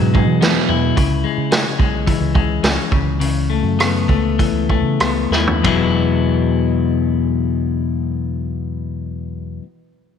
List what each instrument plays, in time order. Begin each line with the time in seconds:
Already playing: overdriven electric guitar E2 B2, clean electric guitar E2 F#3 G#3 B3
0.00 fingered electric bass G#2
0.14 overdriven electric guitar E2 B2, clean electric guitar G#3, kick
0.27 fingered electric bass E3
0.41 overdriven electric guitar E2 B2 E3, clean electric guitar B3, snare, open hi-hat
0.69 fingered electric bass E2, overdriven electric guitar E2 B2, clean electric guitar E4
0.96 fingered electric bass C#2, clean electric guitar C#3, kick, open hi-hat
1.24 clean electric guitar G#3
1.38 fingered electric bass C#3
1.51 clean electric guitar C#4, snare, open hi-hat
1.79 fingered electric bass B1, clean electric guitar G#3, kick
2.06 clean electric guitar E3, kick, open hi-hat
2.20 fingered electric bass C#2
2.35 clean electric guitar G#3, kick
2.63 fingered electric bass C#2, clean electric guitar C#4, snare, open hi-hat
2.91 fingered electric bass C#2, clean electric guitar C#3, kick
3.20 clean electric guitar C#3, open hi-hat
3.50 clean electric guitar A3
3.63 fingered electric bass F#2
3.79 clean electric guitar B3, cross-stick, open hi-hat
4.08 fingered electric bass C#2, clean electric guitar A3, kick
4.39 clean electric guitar E3, kick, open hi-hat
4.53 fingered electric bass C#2
4.69 clean electric guitar A3, kick
4.83 fingered electric bass C#3
5.00 fingered electric bass C#2, clean electric guitar B3, cross-stick, open hi-hat
5.30 fingered electric bass D#2, clean electric guitar E4, snare
5.47 floor tom
5.63 fingered electric bass E1, clean electric guitar E2 B2 F#3 G#3 B3 E4, kick, ride